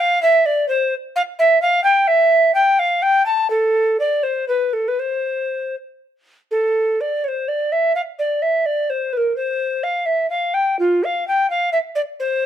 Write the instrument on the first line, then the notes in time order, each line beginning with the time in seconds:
recorder
0.00 F5
0.22 E5
0.46 D5
0.69 C5
1.16 F5
1.39 E5
1.62 F5
1.84 G5
2.08 E5
2.55 G5
2.79 F5
3.02 G5
3.26 A5
3.50 A4
4.00 D5
4.23 C5
4.48 B4
4.73 A4
4.88 B4
5.00 C5
6.51 A4
7.01 D5
7.24 C#5
7.28 C5
7.48 D5
7.72 E5
7.95 F5
8.19 D5
8.42 E5
8.66 D5
8.90 C5
9.13 B4
9.17 A#4
9.36 C5
9.84 F5
10.06 E5
10.30 F5
10.54 G5
10.79 F4
11.04 F5
11.28 G5
11.50 F5
11.72 E5
11.95 D5
12.20 C5